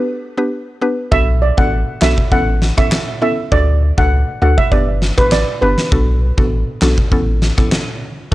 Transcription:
0.37 synth pluck B3 D4 G4 B4
0.81 synth pluck B3 D4 G4 B4
1.11 sub bass B1, synth pluck B3 D4 F#4 A4, steel pan E5, kick
1.42 steel pan D5
1.57 sub bass A1, synth pluck B3 D4 F#4 A4, steel pan F#5, kick
2.01 sub bass B1, synth pluck B3 D4 F#4 A4, steel pan E5, snare, clap
2.18 kick
2.32 sub bass A1, synth pluck B3 C#4 E4 A4, steel pan F#5, kick
2.62 snare
2.77 sub bass A1, synth pluck B3 C#4 E4 A4, steel pan E5, kick, cross-stick
2.92 snare, clap
3.22 synth pluck B3 C#4 E4 A4, steel pan E5
3.52 sub bass D2, synth pluck A3 D4 F#4 A4, steel pan D5, kick
3.98 sub bass C#2, synth pluck A3 D4 F#4 A4, steel pan F#5, kick
4.42 sub bass D2, synth pluck A3 D4 F#4 A4, steel pan F#5
4.58 steel pan E5, kick
4.72 sub bass G1, synth pluck B3 D4 G4 B4, steel pan D5, kick
5.02 snare
5.18 sub bass A1, synth pluck B3 D4 G4 B4, steel pan B4, kick, cross-stick
5.32 steel pan D5, snare, clap
5.62 sub bass G1, synth pluck B3 D4 G4 B4, steel pan B4
5.78 snare
5.92 sub bass B1, synth pluck B3 D4 F#4 A4, kick
6.38 sub bass A1, synth pluck B3 D4 F#4 A4, kick
6.82 sub bass B1, synth pluck B3 D4 F#4 A4, snare, clap
6.98 kick
7.12 sub bass A1, synth pluck B3 C#4 E4 A4, kick
7.42 snare
7.58 sub bass A1, synth pluck B3 C#4 E4 A4, kick, cross-stick
7.72 snare, clap

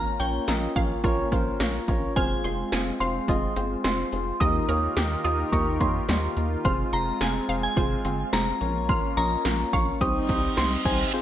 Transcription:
Already playing: analog synth pad A#3 C#4 F4, synth keys C#4 F4 A#4 C#5
0.20 analog synth bass A#1, synth keys C#4 F4 A#4 C#5, synth bell G5, synth arpeggio sound C#6, closed hi-hat
0.48 analog synth bass A#1, synth keys C#4 F4 A#4 D#5, synth arpeggio sound A#5, snare, closed hi-hat
0.76 analog synth bass A#1, synth keys C#4 F4 A#4 C#5, synth arpeggio sound F5, kick, closed hi-hat
1.04 analog synth bass A#1, synth keys C#4 F4 A#4 C#5, synth arpeggio sound F4, kick, closed hi-hat
1.32 analog synth bass A#1, synth arpeggio sound C#4, synth keys C#4 F4 A#4 C5 F5, kick, closed hi-hat
1.60 analog synth bass A#1, synth arpeggio sound A#3, synth keys C#4 F4 A#4 C#5 A#5, snare, closed hi-hat
1.88 analog synth bass A#1, synth keys C#4 F4 A#4 C#5, kick, closed hi-hat
2.16 analog synth bass F1, analog synth pad G#3 C4, synth keys C4 F4 G#4 C5, synth bell G#5, synth arpeggio sound F6, kick, closed hi-hat
2.44 analog synth bass F1, synth keys C4 F4 G#4 C5, synth arpeggio sound C6, closed hi-hat
2.72 analog synth bass F1, synth keys C4 F4 G#4 C5, synth arpeggio sound G#5, snare, closed hi-hat
3.00 analog synth bass F1, synth keys C4 F4 G#4 C5, synth arpeggio sound F5, synth bell C6, closed hi-hat
3.28 analog synth bass F1, synth keys C4 F4 G#4 D#5, synth arpeggio sound F4, kick, closed hi-hat
3.56 analog synth bass G1, synth arpeggio sound C4, synth keys C4 F4 G#4 C5, closed hi-hat
3.84 analog synth bass F1, synth arpeggio sound G#3, synth keys C4 F4 G#4 C5, synth bell C6, snare, closed hi-hat
4.12 analog synth bass F1, synth keys C4 F4 G#4 C5, closed hi-hat
4.40 analog synth bass D#2, analog synth pad D#3 D#4 G4 A#4, synth keys A#3 D#4 G4 A#4, synth arpeggio sound D#5, synth bell D#6, kick, closed hi-hat
4.68 analog synth bass D#2, synth keys A#3 D#4 G4 C#5, synth arpeggio sound A#4, closed hi-hat
4.96 analog synth bass D#2, synth keys A#3 D#4 G4 A#4, synth arpeggio sound G4, snare, closed hi-hat
5.24 analog synth bass D#2, synth keys A#3 D#4 G4 A#4, synth arpeggio sound F4, synth bell D#6, closed hi-hat
5.52 analog synth bass D#2, synth keys A#3 D#4 G4 A#4, synth arpeggio sound D#4, synth bell C#6, kick, closed hi-hat
5.81 analog synth bass F2, synth arpeggio sound A#3, synth keys A#3 D#4 G4 C#5, synth bell C6, kick, closed hi-hat
6.09 analog synth bass D#2, synth arpeggio sound G3, synth keys A#3 D#4 G4 C5, snare, closed hi-hat
6.37 analog synth bass D#2, synth keys A#3 D#4 G4 A#4, closed hi-hat
6.65 analog synth bass F1, analog synth pad G#3 C4, synth keys C4 F4 G#4 C5, synth bell C6, synth arpeggio sound F6, kick, closed hi-hat
6.93 analog synth bass F1, synth keys C4 F4 G#4 C5, synth bell A#5, synth arpeggio sound C6, closed hi-hat
7.21 analog synth bass F1, synth keys C4 F4 G#4 C5, synth arpeggio sound G#5, synth bell G#5, snare, closed hi-hat
7.49 analog synth bass F1, synth keys C4 F4 G#4 C5, synth arpeggio sound F5, closed hi-hat
7.63 synth bell G#5
7.77 analog synth bass F1, synth keys C4 F4 G#4 C5, synth arpeggio sound F4, kick, closed hi-hat
8.05 analog synth bass G1, synth keys C4 F4 G#4 C5, synth arpeggio sound C4, closed hi-hat
8.33 analog synth bass F1, synth arpeggio sound G#3, synth keys C4 F4 G#4 C5, synth bell A#5, snare, closed hi-hat
8.61 analog synth bass A#1, analog synth pad A#3 C#4, synth keys C#4 F4 A#4 C#5, closed hi-hat
8.89 synth bell C6, synth arpeggio sound F6, kick, closed hi-hat
9.17 analog synth bass A#1, synth keys C#4 F4 A#4 D#5, synth bell A#5, synth arpeggio sound C#6, closed hi-hat
9.45 analog synth bass A#1, synth keys C#4 F4 A#4 C#5, synth arpeggio sound A#5, snare, closed hi-hat
9.73 analog synth bass A#1, synth keys C#4 F4 A#4 C#5, synth arpeggio sound F5, synth bell C#6, kick, closed hi-hat
10.01 analog synth bass C2, analog synth pad G3 C4 D#4, synth keys C4 D#4 G4 C5, synth arpeggio sound G4, synth bell D#6, kick, closed hi-hat, reverse cymbal
10.29 analog synth bass C2, synth keys C4 D#4 G4 C5, synth arpeggio sound D#4, kick, closed hi-hat
10.57 analog synth bass C2, synth keys C4 D#4 G4 C5, synth arpeggio sound C4, synth bell C6, snare, closed hi-hat
10.85 analog synth bass C2, synth keys C4 D#4 G4 C5, synth bell G#5, kick, open hi-hat
11.13 synth keys C4 F4 G#4 C5, downlifter

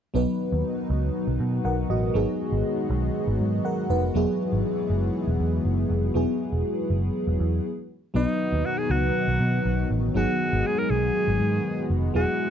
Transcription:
0.14 picked electric bass B1, analog synth pad B2 D#3 F#3 D#4 F#4, fm electric piano F#3 B3 D#4 B4
0.52 picked electric bass D#2
0.90 picked electric bass C#2
1.27 picked electric bass B1
1.40 picked electric bass B2
1.65 picked electric bass B1, fm electric piano A#4 F#5
1.90 picked electric bass A1, fm electric piano F#4 D#5
2.14 picked electric bass G#1, fm electric piano F#3 B3 D#4 G#4, analog synth pad G#3 B3
2.52 picked electric bass G#1
2.90 picked electric bass B1
3.27 picked electric bass G#1
3.40 picked electric bass G#2
3.65 fm electric piano A#4 F#5
3.90 picked electric bass F1, fm electric piano D#4 B4
4.14 picked electric bass E1, analog synth pad E3 B3, fm electric piano F#3 B3 E4 G#4
4.53 picked electric bass G#1
4.90 picked electric bass F#1
5.27 picked electric bass E1
5.40 picked electric bass E2
5.65 picked electric bass F#1
5.90 picked electric bass F1
6.14 picked electric bass E1, fm electric piano F#3 B3 E4 G#4
6.52 picked electric bass E1
6.90 picked electric bass F#1
7.27 picked electric bass E1
7.40 picked electric bass E2
8.14 picked electric bass B1, analog synth pad B2 D#3 F#3 D#4 F#4, fm electric piano F#3 B3 D#4 B4, alto saxophone D#4
8.52 picked electric bass D#2
8.66 alto saxophone F#4
8.78 alto saxophone G#4
8.90 picked electric bass C#2, alto saxophone F#4
9.28 picked electric bass B1
9.40 picked electric bass B2
9.65 picked electric bass B1
9.90 picked electric bass A1
10.14 picked electric bass G#1, fm electric piano F#3 B3 D#4 G#4, analog synth pad G#3 B3, alto saxophone F#4
10.53 picked electric bass G#1
10.66 alto saxophone G#4
10.79 alto saxophone A#4
10.90 picked electric bass B1, alto saxophone G#4
11.28 picked electric bass G#1
11.40 picked electric bass G#2
11.90 picked electric bass F1
12.14 picked electric bass E1, analog synth pad E3 F#3, fm electric piano F#3 B3 E4 G#4, alto saxophone F#4

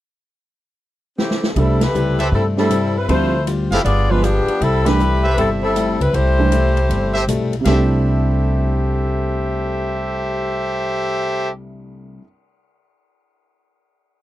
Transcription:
1.18 saxophone section E3 A3 C4 G4, snare
1.31 snare
1.43 snare
1.55 upright bass C2, steel-string acoustic guitar C3 G3 A3 E4, grand piano G3 A3 D4 E4, saxophone section G3 C4 E4 G#4 A4, kick, ride
1.81 saxophone section A3 E4 G4 B4, snare, ride
1.93 upright bass C#2, steel-string acoustic guitar C3 G3 A3 E4, hi-hat pedal
2.19 trumpet section G4 A4 C5 E5, ride
2.32 upright bass G2, steel-string acoustic guitar C3 G3 A3 E4, saxophone section G3 C4 E4 A4, kick
2.57 grand piano G3 A3 D4 G4, saxophone section G3 C4 E4 A4, snare
2.70 steel-string acoustic guitar C3 G3 A3 E4, hi-hat pedal, ride
2.96 saxophone section G3 C4 E4 B4
3.08 upright bass D2, steel-string acoustic guitar D3 G3 C4 F4, grand piano F3 G3 C4 E4, saxophone section A3 E4 F4 C5, kick, ride
3.47 steel-string acoustic guitar D3 G3 C4 F4, hi-hat pedal, ride
3.71 upright bass F#1, saxophone section F3 C4 E4 A4, trumpet section G4 G#4 B4 F5, snare, ride
3.84 upright bass G1, steel-string acoustic guitar G3 B3 F4 G#4, saxophone section B3 F4 G#4 D5, kick, ride
4.09 grand piano F3 G#3 B3 F4, saxophone section G#3 D4 F4 B4
4.22 saxophone section F3 B3 D4 G4, steel-string acoustic guitar G3 B3 F4 G#4, hi-hat pedal, ride
4.46 muted upright bass stroke, ride
4.61 upright bass C2, steel-string acoustic guitar C3 G3 A3 E4, saxophone section G3 C4 E4 A4, kick, ride
4.86 grand piano E3 G3 A3 D4, saxophone section A3 E4 G4 B4, snare, ride
4.99 steel-string acoustic guitar C3 G3 A3 E4, hi-hat pedal
5.23 trumpet section G4 A4 C5 E5
5.37 upright bass G1, steel-string acoustic guitar C3 G3 A3 E4, saxophone section G3 C4 E4 A4, kick, ride
5.63 saxophone section G3 C4 E4 A4
5.76 steel-string acoustic guitar C3 G3 A3 E4, hi-hat pedal, ride
5.99 upright bass C#2, saxophone section G3 C4 E4 B4, ride
6.13 upright bass C2, steel-string acoustic guitar C3 G3 A3 E4, saxophone section A3 E4 G4 C5, kick, ride
6.39 grand piano E3 G3 A3 D4
6.52 steel-string acoustic guitar C3 G3 A3 E4, hi-hat pedal, ride
6.77 ride
6.89 upright bass G1, steel-string acoustic guitar C3 G3 A3 E4, kick, ride
7.14 trumpet section G4 A4 C5 E5
7.27 upright bass B1, steel-string acoustic guitar C3 G3 A3 E4, hi-hat pedal, ride
7.53 ride
7.60 steel-string acoustic guitar C3, grand piano C3 G3
7.65 upright bass C2, steel-string acoustic guitar G3, grand piano A3, trumpet section G4 A4 C5 E5, snare, ride bell
7.69 steel-string acoustic guitar A3, grand piano D4 E4
7.79 steel-string acoustic guitar E4

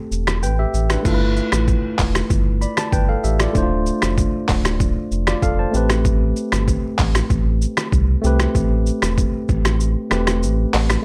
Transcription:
Already playing: tine electric piano A3 C4 G4 A4
0.11 sub bass E1, shaker
0.27 finger snap, cross-stick, shaker
0.42 sub bass A1, tine electric piano B4 G5, shaker
0.59 tine electric piano G4 E5
0.74 sub bass A1, shaker
0.90 tine electric piano D4 B4, finger snap, cross-stick, shaker
1.03 sub bass G1, tine electric piano A3 E4 F4, kick, crash, shaker
1.08 tine electric piano A4
1.14 tine electric piano B4
1.36 shaker
1.52 sub bass A1, finger snap, cross-stick, shaker
1.68 kick, shaker
1.99 sub bass E1, kick, clap, open hi-hat, shaker
2.15 finger snap, cross-stick, shaker
2.30 sub bass G1, kick, shaker
2.61 tine electric piano D5 B5, shaker
2.77 tine electric piano A5, finger snap, cross-stick, shaker
2.92 sub bass G1, tine electric piano B4 G5, kick, shaker
3.09 tine electric piano A4 F5
3.24 sub bass A1, tine electric piano G4 E5, shaker
3.40 tine electric piano F4 D5, finger snap, cross-stick, shaker
3.53 sub bass D1, tine electric piano A3 D4 E4, kick, shaker
3.58 tine electric piano C5
3.62 tine electric piano F4
3.86 shaker
4.02 sub bass F1, finger snap, cross-stick, shaker
4.18 kick, shaker
4.49 sub bass D1, kick, clap, open hi-hat, shaker
4.65 finger snap, cross-stick, shaker
4.80 kick, shaker
5.11 sub bass F1, shaker
5.27 tine electric piano F4 D5, finger snap, cross-stick, shaker
5.42 sub bass F1, tine electric piano A4 F5, kick, shaker
5.59 tine electric piano C5 A5
5.71 sub bass A1, tine electric piano A3 C4 G4, shaker
5.77 tine electric piano B4
5.90 finger snap, cross-stick, shaker
6.05 kick, shaker
6.36 shaker
6.52 sub bass G1, finger snap, cross-stick, shaker
6.68 kick, shaker
6.99 sub bass A1, kick, clap, open hi-hat, shaker
7.15 finger snap, cross-stick, shaker
7.30 sub bass A1, kick, shaker
7.62 shaker
7.77 finger snap, cross-stick, shaker
7.92 sub bass C2, kick, shaker
8.21 sub bass C2, tine electric piano A3 C4 G4, shaker
8.27 tine electric piano B4
8.40 finger snap, cross-stick, shaker
8.55 sub bass A1, kick, shaker
8.86 shaker
9.02 sub bass E1, finger snap, cross-stick, shaker
9.18 kick, shaker
9.49 sub bass A1, kick, shaker
9.65 finger snap, cross-stick, shaker
9.80 shaker
10.10 sub bass E1, tine electric piano A3 C4 G4 B4, finger snap, cross-stick, shaker
10.27 finger snap, cross-stick, shaker
10.42 sub bass A1, shaker
10.74 sub bass A1, clap, open hi-hat, shaker
10.90 finger snap, cross-stick, shaker

